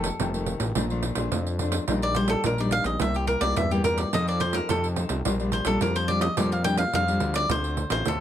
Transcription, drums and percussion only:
0, 0, Header, 1, 2, 480
1, 0, Start_track
1, 0, Key_signature, -2, "major"
1, 0, Tempo, 561798
1, 648, Time_signature, 4, 2, 24, 8
1, 7009, End_track
2, 0, Start_track
2, 0, Title_t, "Pandeiro"
2, 32, Note_on_c, 9, 54, 71
2, 118, Note_off_c, 9, 54, 0
2, 167, Note_on_c, 9, 54, 81
2, 253, Note_off_c, 9, 54, 0
2, 291, Note_on_c, 9, 54, 41
2, 376, Note_off_c, 9, 54, 0
2, 396, Note_on_c, 9, 54, 58
2, 482, Note_off_c, 9, 54, 0
2, 511, Note_on_c, 9, 54, 65
2, 597, Note_off_c, 9, 54, 0
2, 643, Note_on_c, 9, 54, 87
2, 729, Note_off_c, 9, 54, 0
2, 770, Note_on_c, 9, 54, 34
2, 856, Note_off_c, 9, 54, 0
2, 876, Note_on_c, 9, 54, 62
2, 962, Note_off_c, 9, 54, 0
2, 986, Note_on_c, 9, 54, 77
2, 1071, Note_off_c, 9, 54, 0
2, 1125, Note_on_c, 9, 54, 79
2, 1210, Note_off_c, 9, 54, 0
2, 1252, Note_on_c, 9, 54, 38
2, 1337, Note_off_c, 9, 54, 0
2, 1359, Note_on_c, 9, 54, 59
2, 1445, Note_off_c, 9, 54, 0
2, 1468, Note_on_c, 9, 54, 74
2, 1554, Note_off_c, 9, 54, 0
2, 1603, Note_on_c, 9, 54, 82
2, 1688, Note_off_c, 9, 54, 0
2, 1729, Note_on_c, 9, 54, 37
2, 1814, Note_off_c, 9, 54, 0
2, 1833, Note_on_c, 9, 54, 65
2, 1919, Note_off_c, 9, 54, 0
2, 1946, Note_on_c, 9, 54, 74
2, 2031, Note_off_c, 9, 54, 0
2, 2082, Note_on_c, 9, 54, 86
2, 2168, Note_off_c, 9, 54, 0
2, 2206, Note_on_c, 9, 54, 38
2, 2291, Note_off_c, 9, 54, 0
2, 2315, Note_on_c, 9, 54, 62
2, 2400, Note_off_c, 9, 54, 0
2, 2429, Note_on_c, 9, 54, 60
2, 2514, Note_off_c, 9, 54, 0
2, 2559, Note_on_c, 9, 54, 91
2, 2644, Note_off_c, 9, 54, 0
2, 2686, Note_on_c, 9, 54, 37
2, 2771, Note_off_c, 9, 54, 0
2, 2796, Note_on_c, 9, 54, 57
2, 2881, Note_off_c, 9, 54, 0
2, 2912, Note_on_c, 9, 54, 69
2, 2998, Note_off_c, 9, 54, 0
2, 3045, Note_on_c, 9, 54, 79
2, 3130, Note_off_c, 9, 54, 0
2, 3171, Note_on_c, 9, 54, 39
2, 3257, Note_off_c, 9, 54, 0
2, 3282, Note_on_c, 9, 54, 64
2, 3367, Note_off_c, 9, 54, 0
2, 3396, Note_on_c, 9, 54, 69
2, 3482, Note_off_c, 9, 54, 0
2, 3528, Note_on_c, 9, 54, 79
2, 3613, Note_off_c, 9, 54, 0
2, 3653, Note_on_c, 9, 54, 33
2, 3738, Note_off_c, 9, 54, 0
2, 3760, Note_on_c, 9, 54, 68
2, 3846, Note_off_c, 9, 54, 0
2, 3870, Note_on_c, 9, 54, 73
2, 3956, Note_off_c, 9, 54, 0
2, 4006, Note_on_c, 9, 54, 85
2, 4092, Note_off_c, 9, 54, 0
2, 4133, Note_on_c, 9, 54, 41
2, 4219, Note_off_c, 9, 54, 0
2, 4240, Note_on_c, 9, 54, 65
2, 4326, Note_off_c, 9, 54, 0
2, 4350, Note_on_c, 9, 54, 68
2, 4435, Note_off_c, 9, 54, 0
2, 4487, Note_on_c, 9, 54, 88
2, 4573, Note_off_c, 9, 54, 0
2, 4610, Note_on_c, 9, 54, 36
2, 4696, Note_off_c, 9, 54, 0
2, 4715, Note_on_c, 9, 54, 64
2, 4800, Note_off_c, 9, 54, 0
2, 4825, Note_on_c, 9, 54, 76
2, 4910, Note_off_c, 9, 54, 0
2, 4962, Note_on_c, 9, 54, 83
2, 5048, Note_off_c, 9, 54, 0
2, 5088, Note_on_c, 9, 54, 40
2, 5173, Note_off_c, 9, 54, 0
2, 5196, Note_on_c, 9, 54, 57
2, 5281, Note_off_c, 9, 54, 0
2, 5307, Note_on_c, 9, 54, 76
2, 5392, Note_off_c, 9, 54, 0
2, 5442, Note_on_c, 9, 54, 93
2, 5528, Note_off_c, 9, 54, 0
2, 5569, Note_on_c, 9, 54, 36
2, 5655, Note_off_c, 9, 54, 0
2, 5677, Note_on_c, 9, 54, 64
2, 5762, Note_off_c, 9, 54, 0
2, 5788, Note_on_c, 9, 54, 74
2, 5874, Note_off_c, 9, 54, 0
2, 5925, Note_on_c, 9, 54, 75
2, 6010, Note_off_c, 9, 54, 0
2, 6051, Note_on_c, 9, 54, 42
2, 6136, Note_off_c, 9, 54, 0
2, 6154, Note_on_c, 9, 54, 63
2, 6239, Note_off_c, 9, 54, 0
2, 6271, Note_on_c, 9, 54, 64
2, 6356, Note_off_c, 9, 54, 0
2, 6403, Note_on_c, 9, 54, 90
2, 6489, Note_off_c, 9, 54, 0
2, 6528, Note_on_c, 9, 54, 39
2, 6613, Note_off_c, 9, 54, 0
2, 6639, Note_on_c, 9, 54, 61
2, 6725, Note_off_c, 9, 54, 0
2, 6751, Note_on_c, 9, 54, 78
2, 6837, Note_off_c, 9, 54, 0
2, 6882, Note_on_c, 9, 54, 83
2, 6967, Note_off_c, 9, 54, 0
2, 7009, End_track
0, 0, End_of_file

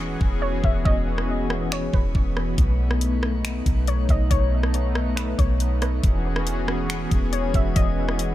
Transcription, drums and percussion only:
0, 0, Header, 1, 2, 480
1, 0, Start_track
1, 0, Key_signature, 4, "major"
1, 0, Tempo, 431655
1, 951, Time_signature, 4, 2, 24, 8
1, 9281, End_track
2, 0, Start_track
2, 0, Title_t, "Drums"
2, 232, Note_on_c, 9, 36, 101
2, 343, Note_off_c, 9, 36, 0
2, 708, Note_on_c, 9, 36, 92
2, 819, Note_off_c, 9, 36, 0
2, 951, Note_on_c, 9, 36, 114
2, 1062, Note_off_c, 9, 36, 0
2, 1313, Note_on_c, 9, 37, 94
2, 1424, Note_off_c, 9, 37, 0
2, 1670, Note_on_c, 9, 37, 96
2, 1781, Note_off_c, 9, 37, 0
2, 1912, Note_on_c, 9, 26, 118
2, 2024, Note_off_c, 9, 26, 0
2, 2152, Note_on_c, 9, 36, 103
2, 2263, Note_off_c, 9, 36, 0
2, 2390, Note_on_c, 9, 36, 92
2, 2501, Note_off_c, 9, 36, 0
2, 2632, Note_on_c, 9, 37, 95
2, 2743, Note_off_c, 9, 37, 0
2, 2870, Note_on_c, 9, 42, 77
2, 2871, Note_on_c, 9, 36, 113
2, 2981, Note_off_c, 9, 42, 0
2, 2982, Note_off_c, 9, 36, 0
2, 3232, Note_on_c, 9, 37, 93
2, 3344, Note_off_c, 9, 37, 0
2, 3350, Note_on_c, 9, 42, 77
2, 3461, Note_off_c, 9, 42, 0
2, 3590, Note_on_c, 9, 37, 99
2, 3701, Note_off_c, 9, 37, 0
2, 3833, Note_on_c, 9, 26, 112
2, 3835, Note_on_c, 9, 42, 77
2, 3944, Note_off_c, 9, 26, 0
2, 3946, Note_off_c, 9, 42, 0
2, 4072, Note_on_c, 9, 36, 101
2, 4072, Note_on_c, 9, 42, 65
2, 4183, Note_off_c, 9, 36, 0
2, 4184, Note_off_c, 9, 42, 0
2, 4309, Note_on_c, 9, 42, 73
2, 4420, Note_off_c, 9, 42, 0
2, 4548, Note_on_c, 9, 36, 95
2, 4550, Note_on_c, 9, 42, 56
2, 4659, Note_off_c, 9, 36, 0
2, 4661, Note_off_c, 9, 42, 0
2, 4790, Note_on_c, 9, 42, 77
2, 4791, Note_on_c, 9, 36, 117
2, 4901, Note_off_c, 9, 42, 0
2, 4902, Note_off_c, 9, 36, 0
2, 5153, Note_on_c, 9, 37, 94
2, 5264, Note_off_c, 9, 37, 0
2, 5271, Note_on_c, 9, 42, 77
2, 5383, Note_off_c, 9, 42, 0
2, 5509, Note_on_c, 9, 37, 97
2, 5620, Note_off_c, 9, 37, 0
2, 5752, Note_on_c, 9, 26, 115
2, 5754, Note_on_c, 9, 42, 82
2, 5863, Note_off_c, 9, 26, 0
2, 5865, Note_off_c, 9, 42, 0
2, 5992, Note_on_c, 9, 36, 103
2, 5992, Note_on_c, 9, 42, 66
2, 6103, Note_off_c, 9, 36, 0
2, 6103, Note_off_c, 9, 42, 0
2, 6229, Note_on_c, 9, 42, 75
2, 6340, Note_off_c, 9, 42, 0
2, 6470, Note_on_c, 9, 42, 57
2, 6473, Note_on_c, 9, 37, 98
2, 6582, Note_off_c, 9, 42, 0
2, 6584, Note_off_c, 9, 37, 0
2, 6711, Note_on_c, 9, 36, 110
2, 6711, Note_on_c, 9, 42, 78
2, 6822, Note_off_c, 9, 42, 0
2, 6823, Note_off_c, 9, 36, 0
2, 7073, Note_on_c, 9, 37, 98
2, 7184, Note_off_c, 9, 37, 0
2, 7191, Note_on_c, 9, 42, 81
2, 7302, Note_off_c, 9, 42, 0
2, 7430, Note_on_c, 9, 37, 97
2, 7541, Note_off_c, 9, 37, 0
2, 7671, Note_on_c, 9, 26, 115
2, 7673, Note_on_c, 9, 42, 75
2, 7782, Note_off_c, 9, 26, 0
2, 7784, Note_off_c, 9, 42, 0
2, 7911, Note_on_c, 9, 36, 100
2, 7911, Note_on_c, 9, 42, 67
2, 8022, Note_off_c, 9, 36, 0
2, 8023, Note_off_c, 9, 42, 0
2, 8148, Note_on_c, 9, 42, 74
2, 8259, Note_off_c, 9, 42, 0
2, 8387, Note_on_c, 9, 36, 91
2, 8388, Note_on_c, 9, 42, 59
2, 8498, Note_off_c, 9, 36, 0
2, 8500, Note_off_c, 9, 42, 0
2, 8629, Note_on_c, 9, 42, 78
2, 8630, Note_on_c, 9, 36, 110
2, 8740, Note_off_c, 9, 42, 0
2, 8741, Note_off_c, 9, 36, 0
2, 8991, Note_on_c, 9, 37, 94
2, 9102, Note_off_c, 9, 37, 0
2, 9109, Note_on_c, 9, 42, 78
2, 9220, Note_off_c, 9, 42, 0
2, 9281, End_track
0, 0, End_of_file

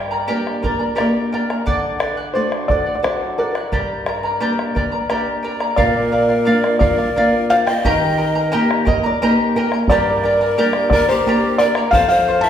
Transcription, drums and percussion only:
0, 0, Header, 1, 2, 480
1, 0, Start_track
1, 0, Key_signature, -2, "minor"
1, 0, Tempo, 688073
1, 1159, Time_signature, 3, 2, 24, 8
1, 4037, Tempo, 682594
1, 8753, End_track
2, 0, Start_track
2, 0, Title_t, "Bombo"
2, 328, Note_on_c, 9, 37, 43
2, 397, Note_off_c, 9, 37, 0
2, 446, Note_on_c, 9, 37, 20
2, 446, Note_on_c, 9, 43, 58
2, 516, Note_off_c, 9, 37, 0
2, 516, Note_off_c, 9, 43, 0
2, 686, Note_on_c, 9, 37, 61
2, 756, Note_off_c, 9, 37, 0
2, 931, Note_on_c, 9, 37, 20
2, 1001, Note_off_c, 9, 37, 0
2, 1047, Note_on_c, 9, 37, 52
2, 1117, Note_off_c, 9, 37, 0
2, 1165, Note_on_c, 9, 43, 62
2, 1235, Note_off_c, 9, 43, 0
2, 1287, Note_on_c, 9, 37, 18
2, 1356, Note_off_c, 9, 37, 0
2, 1397, Note_on_c, 9, 37, 64
2, 1467, Note_off_c, 9, 37, 0
2, 1759, Note_on_c, 9, 37, 54
2, 1828, Note_off_c, 9, 37, 0
2, 1879, Note_on_c, 9, 37, 20
2, 1879, Note_on_c, 9, 43, 65
2, 1949, Note_off_c, 9, 37, 0
2, 1949, Note_off_c, 9, 43, 0
2, 2123, Note_on_c, 9, 37, 67
2, 2193, Note_off_c, 9, 37, 0
2, 2358, Note_on_c, 9, 37, 22
2, 2427, Note_off_c, 9, 37, 0
2, 2478, Note_on_c, 9, 37, 53
2, 2548, Note_off_c, 9, 37, 0
2, 2598, Note_on_c, 9, 37, 22
2, 2598, Note_on_c, 9, 43, 63
2, 2668, Note_off_c, 9, 37, 0
2, 2668, Note_off_c, 9, 43, 0
2, 2835, Note_on_c, 9, 37, 64
2, 2905, Note_off_c, 9, 37, 0
2, 2958, Note_on_c, 9, 37, 23
2, 3028, Note_off_c, 9, 37, 0
2, 3202, Note_on_c, 9, 37, 51
2, 3272, Note_off_c, 9, 37, 0
2, 3321, Note_on_c, 9, 37, 22
2, 3321, Note_on_c, 9, 43, 62
2, 3391, Note_off_c, 9, 37, 0
2, 3391, Note_off_c, 9, 43, 0
2, 3555, Note_on_c, 9, 37, 59
2, 3625, Note_off_c, 9, 37, 0
2, 3910, Note_on_c, 9, 37, 46
2, 3979, Note_off_c, 9, 37, 0
2, 4030, Note_on_c, 9, 37, 23
2, 4030, Note_on_c, 9, 43, 69
2, 4100, Note_off_c, 9, 37, 0
2, 4100, Note_off_c, 9, 43, 0
2, 4275, Note_on_c, 9, 37, 22
2, 4345, Note_off_c, 9, 37, 0
2, 4390, Note_on_c, 9, 37, 27
2, 4460, Note_off_c, 9, 37, 0
2, 4637, Note_on_c, 9, 37, 56
2, 4707, Note_off_c, 9, 37, 0
2, 4755, Note_on_c, 9, 43, 82
2, 4825, Note_off_c, 9, 43, 0
2, 4882, Note_on_c, 9, 37, 23
2, 4952, Note_off_c, 9, 37, 0
2, 5241, Note_on_c, 9, 37, 23
2, 5312, Note_off_c, 9, 37, 0
2, 5364, Note_on_c, 9, 37, 59
2, 5434, Note_off_c, 9, 37, 0
2, 5487, Note_on_c, 9, 37, 23
2, 5487, Note_on_c, 9, 43, 68
2, 5558, Note_off_c, 9, 37, 0
2, 5558, Note_off_c, 9, 43, 0
2, 5728, Note_on_c, 9, 37, 23
2, 5798, Note_off_c, 9, 37, 0
2, 5845, Note_on_c, 9, 37, 24
2, 5915, Note_off_c, 9, 37, 0
2, 6090, Note_on_c, 9, 37, 57
2, 6160, Note_off_c, 9, 37, 0
2, 6205, Note_on_c, 9, 43, 73
2, 6276, Note_off_c, 9, 43, 0
2, 6323, Note_on_c, 9, 37, 21
2, 6393, Note_off_c, 9, 37, 0
2, 6686, Note_on_c, 9, 37, 23
2, 6756, Note_off_c, 9, 37, 0
2, 6801, Note_on_c, 9, 37, 54
2, 6871, Note_off_c, 9, 37, 0
2, 6914, Note_on_c, 9, 37, 20
2, 6914, Note_on_c, 9, 43, 75
2, 6984, Note_off_c, 9, 37, 0
2, 6984, Note_off_c, 9, 43, 0
2, 7161, Note_on_c, 9, 37, 25
2, 7232, Note_off_c, 9, 37, 0
2, 7276, Note_on_c, 9, 37, 24
2, 7347, Note_off_c, 9, 37, 0
2, 7514, Note_on_c, 9, 37, 56
2, 7584, Note_off_c, 9, 37, 0
2, 7636, Note_on_c, 9, 43, 73
2, 7706, Note_off_c, 9, 43, 0
2, 7761, Note_on_c, 9, 37, 24
2, 7832, Note_off_c, 9, 37, 0
2, 8117, Note_on_c, 9, 37, 26
2, 8188, Note_off_c, 9, 37, 0
2, 8231, Note_on_c, 9, 37, 66
2, 8301, Note_off_c, 9, 37, 0
2, 8356, Note_on_c, 9, 37, 24
2, 8356, Note_on_c, 9, 43, 77
2, 8426, Note_off_c, 9, 37, 0
2, 8426, Note_off_c, 9, 43, 0
2, 8753, End_track
0, 0, End_of_file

